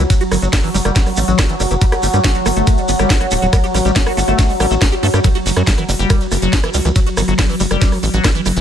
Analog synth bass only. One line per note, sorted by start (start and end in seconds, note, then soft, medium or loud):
0.32 0.38 G1 medium
0.42 0.49 G1 medium
0.74 0.81 F#1 medium
0.85 0.91 F#1 medium
1.17 1.24 A1 loud
1.28 1.34 A1 medium
1.60 1.66 F#1 loud
1.71 1.77 F#1 medium
2.03 2.09 G1 medium
2.14 2.20 G2 medium
2.46 2.52 G1 loud
2.56 2.63 G1 medium
2.89 2.95 G1 medium
2.99 3.06 G1 medium
3.32 3.38 D1 loud
3.42 3.49 D1 medium
3.74 3.81 A1 medium
3.85 3.91 A1 medium
4.17 4.24 G1 loud
4.28 4.34 G1 medium
4.60 4.66 A1 medium
4.71 4.77 A1 medium
5.03 5.09 G2 loud
5.14 5.20 G2 medium
5.46 5.52 F#1 medium
5.57 5.63 F#2 medium
5.89 5.95 F#1 loud
5.99 6.06 F#1 medium
6.32 6.38 F#1 loud
6.42 6.49 F#1 medium
6.74 6.81 C#2 medium
6.85 6.91 C#2 medium
7.17 7.24 G1 loud
7.28 7.34 G1 medium
7.60 7.66 F#1 loud
7.71 7.77 F#1 medium
8.03 8.09 A1 loud
8.14 8.20 A1 medium
8.46 8.52 F#1 loud
8.56 8.61 F#1 medium